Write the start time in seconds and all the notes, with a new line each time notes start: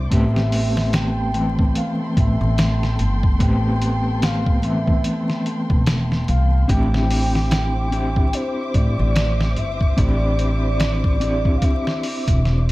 0.10 A1 A3 B3 C4 G4 A4 E5 G5 C6, kick, closed hi-hat
0.36 snare
0.52 open hi-hat
0.77 snare
0.93 G5, snare, closed hi-hat
1.34 E3 A3 B3 C4, closed hi-hat
1.59 kick
1.75 F5, closed hi-hat
2.17 A1 E5, kick, closed hi-hat
2.41 A1
2.58 snare, closed hi-hat
2.83 snare
2.99 G1, closed hi-hat
3.23 kick
3.39 A1 A3 B3 C4 G4 G5, kick, closed hi-hat
3.82 closed hi-hat
4.22 F5, snare, closed hi-hat
4.46 kick
4.62 E3 A3 B3 C4 E5, closed hi-hat
4.88 kick
5.04 closed hi-hat
5.30 snare
5.46 closed hi-hat
5.70 E1, kick
5.86 snare, closed hi-hat
6.12 snare
6.28 C2 F5, closed hi-hat
6.68 A1 C4 D4 E4 G4 C5 E5 G5 D6, kick, closed hi-hat
6.94 snare
7.11 open hi-hat
7.35 snare
7.51 snare, closed hi-hat
7.91 C4 D4 E4 G4, closed hi-hat
8.16 kick
8.33 C5, closed hi-hat
8.74 A1 D5, kick, closed hi-hat
8.99 A1
9.16 snare, closed hi-hat
9.41 snare
9.56 G1 E5, closed hi-hat
9.81 kick
9.97 A1 C4 D4 E4 G4 D5, kick, closed hi-hat
10.39 closed hi-hat
10.80 snare, closed hi-hat
11.04 kick
11.20 C4 D4 E4 G4, closed hi-hat
11.45 kick
11.58 F5
11.62 E5, kick, closed hi-hat
11.87 snare
12.03 open hi-hat
12.28 E1, kick, closed hi-hat
12.45 snare